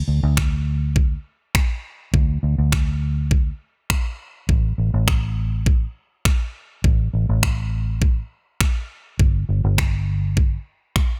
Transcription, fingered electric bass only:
0.08 D2
0.23 D2
2.14 D2
2.43 D2
2.58 D2
4.49 A1
4.78 A1
4.94 A1
6.84 A1
7.13 A1
7.29 A1
9.19 G1
9.49 G1
9.64 G1

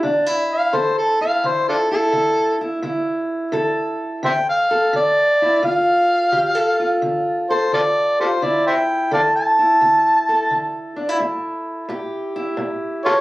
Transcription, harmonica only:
0.52 F5
0.75 C5
0.98 A4
1.22 F5
1.47 C5
1.68 D4 F4 A4
1.92 A4
4.25 C5 E5 G5
4.49 F5
4.96 D5
5.65 F5
7.50 C5
7.74 F4 A4 D5
8.20 G4 A4 C5
8.44 D5
8.67 C5 E5 G5
9.13 D5 F5 A5
9.36 A5
13.06 F4 A4 C#5

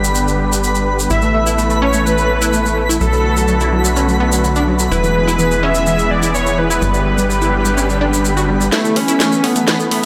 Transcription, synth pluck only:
1.11 E4
1.23 A3
1.34 A3
1.46 E4
1.58 A3
1.70 A3
1.82 C#4
1.94 A3
2.06 A3
2.30 A3
2.42 E4
2.53 A3
2.65 A3
2.77 A3
2.89 E4
3.01 F#3
3.13 F#3
3.37 F#3
3.49 F#3
3.61 E4
3.73 F#3
3.85 F#3
3.96 C#4
4.08 F#3
4.20 B3
4.32 F#3
4.44 F#3
4.56 D4
4.68 F#3
4.80 F#3
4.91 E4
5.04 E3
5.15 E3
5.27 E4
5.39 E3
5.51 E3
5.63 C#4
5.75 E3
5.87 E3
6.11 E3
6.23 E4
6.34 E3
6.46 E3
6.58 E3
6.70 E4
6.82 G3
6.94 G3
7.18 G3
7.30 G3
7.42 E4
7.53 G3
7.65 G3
7.77 C#4
7.89 G3
8.01 D4
8.13 G3
8.25 G3
8.37 F#4
8.49 G3
8.61 G3
8.72 E4
8.84 A3
8.96 A3
9.08 E4
9.20 A3
9.32 A3
9.44 C#4
9.56 A3
9.68 A3
9.91 A3

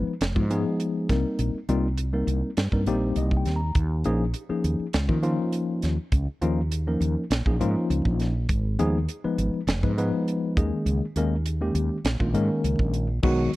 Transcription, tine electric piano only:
Already playing: F3 G#3 B3 D#4 B4
0.35 F3 G#3 B3 D#4 F4
0.50 F3 G#3 B3 D#4 G#4
1.09 G3 A#3 C4 D#4 A#4
1.69 G3 A#3 C4 D#4 F4
1.98 D#4 F4
2.13 G3 A#3 C4 D#4 A#4
2.73 G3 A#3 C4 D#4 A#4
2.87 G3 A#3 C4 D#4 G4 C5
3.17 D#5
3.37 G5
3.56 A#5
4.05 F3 A#3 C#4 D#4 G#4
4.36 D#4 G4
4.49 F3 A#3 C#4 D#4 G#4
5.09 F3 A#3 C#4 D#4 F4
5.23 F3 A#3 C#4 D#4 F4
6.42 F3 A#3 C#4 D#4 F4
6.72 D#4 G#4
6.87 F3 A#3 C#4 D#4 A#4
7.46 F3 A#3 C#4 D#4 G#4
7.60 F3 A#3 C#4 D#4 F4
8.79 F3 G#3 B3 D#4 G#4
9.09 D#4 G#4
9.24 F3 G#3 B3 D#4 B4
9.83 F3 G#3 B3 D#4 B4
9.98 F3 G#3 B3 D#4 B4
10.57 D#3 G#3 A#3 C#4 G#4
11.17 D#3 G#3 A#3 C#4 A#4
11.46 C#4 G#4
11.61 D#3 G#3 A#3 C#4 G4
12.20 D#3 G#3 A#3 C#4 F4
12.34 D#3 G#3 A#3 C#4 A#4
13.23 D#3 F#3 G#3 B3 F#4

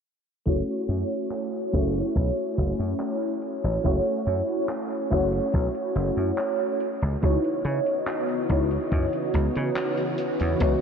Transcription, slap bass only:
0.47 F#1
0.89 F#2
1.74 F#1
2.16 B1
2.58 F#1
2.79 F#2
3.64 A1
3.85 F#1
4.27 F#2
5.12 F#1
5.54 B1
5.95 F#1
6.17 F#2
7.02 C#2
7.23 C#2
7.65 C#3
8.50 C#2
8.92 F#2
9.34 C#2
9.56 C#3
10.41 E2
10.61 C#2

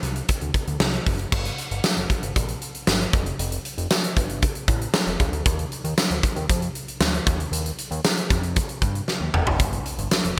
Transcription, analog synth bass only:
0.03 C2
0.42 D2
0.68 D2
0.80 C2
1.07 F#1
1.32 G1
1.71 G1
1.97 F1
2.23 G1
2.36 A#1
2.88 G1
3.13 F1
3.39 F1
3.78 F1
4.17 G1
4.68 A1
5.07 F1
5.20 C#2
5.32 D2
5.46 D#2
5.84 D#2
6.11 D2
6.36 D#2
6.49 F2
7.00 D2
7.26 D#2
7.52 D#2
7.91 D#2
8.30 F2
8.82 G2
9.20 D#2
9.34 F1
9.47 F#1
9.60 G1
9.98 G1
10.24 F1

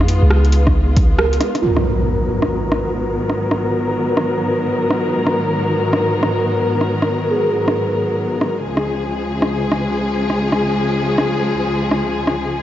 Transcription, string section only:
Already playing: G#3 B3 F4
1.62 G#2 D#3 F#3 B3 A#4
8.62 C#2 C#3 F3 G#3 G#4

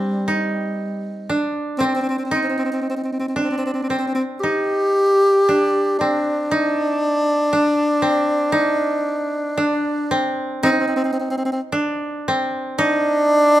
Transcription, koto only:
Already playing: C4 D4
0.28 D#4
1.29 D4
1.80 C4
2.31 D#4
3.36 D4
3.90 C4
4.43 D#4
5.49 D4
6.01 C4
6.51 D#4
7.53 D4
8.02 C4
8.52 D#4
9.57 D4
10.11 C4
10.63 D#4
11.72 D4
12.28 C4
12.78 D#4

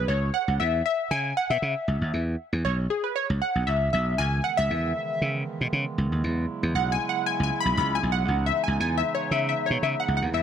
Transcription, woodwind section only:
4.19 C#3 D#3 E3 G#3 B3
6.25 C#3 F#3 E4
8.29 C#3 E3 B3 D#4
10.35 F#3 E4

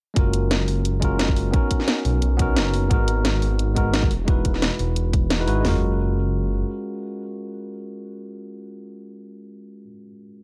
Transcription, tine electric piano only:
0.14 G#3 C#4 F4 F#4
0.19 A#4
1.00 G#3 C#4 F4 F#4
1.05 A#4
1.51 B3 C#4 D#4 F#4
1.56 A#4
2.37 B3 C#4 D#4 F#4
2.42 A#4
2.88 G#3 B3 D#4 F#4
2.93 A#4
3.75 G#3 B3 D#4 F#4 A#4
4.25 G#3 D#4 E4 F#4
4.30 B4
5.38 G#3 D#4 E4 F#4 B4
5.46 G#3 D#4 E4 F#4 B4
5.61 G#3 C#4 F4
5.67 F#4 A#4

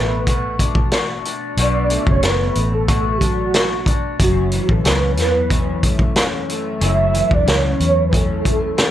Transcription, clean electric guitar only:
Already playing: B2 A3 D4 F#4
0.28 F#4
0.60 D4
0.93 F#4
1.26 D4
1.59 B2 F#4
1.90 A3
2.24 F#4
2.56 A3
2.88 F#4
3.21 D4
3.54 F#4
3.87 D4
4.20 F#2 C#4
4.52 E3
4.84 C#4
5.18 E3
5.50 C#4
5.83 A3
6.16 C#4
6.49 A3
6.80 F#2 C#4
7.14 E3
7.46 C#4
7.79 E3
8.11 C#4
8.44 A3
8.77 C#4

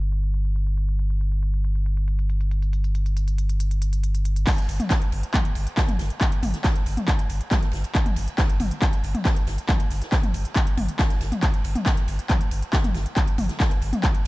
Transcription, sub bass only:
Already playing: G1
4.58 G1
4.69 G1
5.02 G1
5.12 G1
5.45 G1
5.56 G1
5.89 G1
5.99 G1
6.32 G1
6.43 G1
6.75 G1
6.86 G1
7.19 G1
7.30 G1
7.62 G1
7.73 G1
8.06 G1
8.17 G1
8.49 G1
8.60 G1
8.93 G1
9.04 G1
9.36 G1
9.47 G1
9.80 G1
9.91 G1
10.23 G1
10.34 G1
10.67 G1
10.77 G1
11.10 G1
11.21 G1
11.54 G1
11.64 G1
11.97 G1
12.08 G1
12.41 G1
12.51 G1
12.84 G1
12.95 G1
13.28 G1
13.38 G1
13.71 G1
13.82 G1
14.15 G1

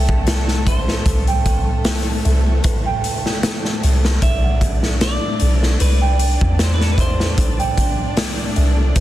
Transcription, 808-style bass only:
Already playing: C2
1.06 C2
2.26 C2
3.84 C2
4.23 B1
5.42 B1
5.81 C2
6.42 E2
7.38 C2
8.57 C2
8.96 C2

